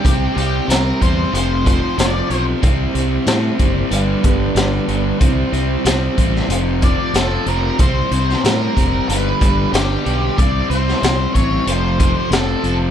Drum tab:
HH |x-x-x-x-x-x-x-x-|x-x-x-x-x-x-x-x-|x-x-x-x-x-x-x-x-|x-x-x-x-x-x-x-x-|
SD |----o-------o---|----o-------o---|----o--o----o---|---oo-------o---|
BD |o-----o---o-----|o-----o---o-----|o-----o---o-----|o-----o---o-----|

HH |x-x-x-x-x-x-x-x-|
SD |---oo-------o---|
BD |o-----o---o-----|